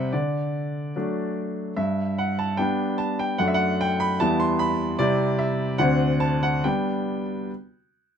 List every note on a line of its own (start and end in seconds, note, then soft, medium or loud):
0.00 0.10 C3 medium
0.00 0.14 G3 soft
0.00 0.14 C4 soft
0.00 0.14 G4 soft
0.00 0.12 E5 medium
0.00 0.13 F#5 medium
0.00 0.13 G5 medium
0.12 0.93 D3 soft
0.12 1.36 D5 medium
0.96 1.73 F#3 soft
0.96 1.73 A3 soft
0.96 1.73 D4 soft
1.76 2.56 G2 soft
1.76 2.17 E5 medium
2.18 2.38 F#5 medium
2.39 2.59 A5 medium
2.57 3.36 G3 soft
2.57 3.36 B3 soft
2.57 3.36 D4 soft
2.57 2.99 G5 medium
2.98 3.19 A5 medium
3.19 3.40 G5 medium
3.38 4.17 F#2 medium
3.38 4.15 A3 soft
3.38 4.16 D4 soft
3.38 3.46 F#5 medium
3.48 3.54 E5 medium
3.54 3.80 F#5 medium
3.81 4.00 G5 medium
4.00 4.20 B5 medium
4.20 4.96 E2 medium
4.20 4.95 G3 soft
4.20 4.95 B3 soft
4.20 4.95 E4 soft
4.20 4.39 A5 medium
4.40 4.59 C6 medium
4.59 4.98 B5 medium
4.99 5.77 C3 medium
4.99 5.76 G3 soft
4.99 5.76 C4 soft
4.99 5.76 E4 soft
4.99 5.38 D5 medium
5.39 5.79 E5 medium
5.78 6.61 D2 medium
5.78 6.59 D3 soft
5.78 6.60 C4 soft
5.78 6.60 D4 soft
5.78 6.20 F#5 medium
6.20 6.42 A5 medium
6.43 6.64 F#5 medium
6.64 7.25 G3 soft
6.64 7.33 B3 soft
6.64 7.33 D4 soft
6.64 7.50 G5 medium